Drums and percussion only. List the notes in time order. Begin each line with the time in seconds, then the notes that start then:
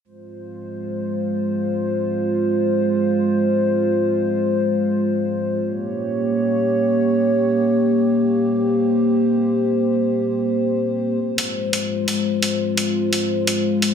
11.38 closed hi-hat
11.73 closed hi-hat
12.08 closed hi-hat
12.43 closed hi-hat
12.77 closed hi-hat
13.13 closed hi-hat
13.47 closed hi-hat
13.82 closed hi-hat